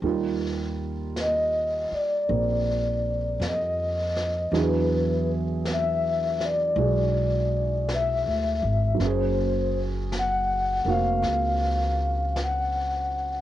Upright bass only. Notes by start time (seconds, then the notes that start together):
0.02 D#2
1.91 muted upright bass stroke
2.29 A#1
3.40 F2
4.52 E2
6.76 B1
8.26 D2
8.62 G#1
9.00 F#1
10.85 F1
11.22 C#2